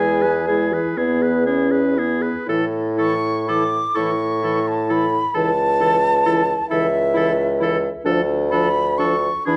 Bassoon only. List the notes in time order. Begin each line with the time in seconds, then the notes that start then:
Already playing: E2
0.98 E2
2.48 A2
3.97 A2
5.35 C#2
6.71 C#2
8.06 D2
9.46 E2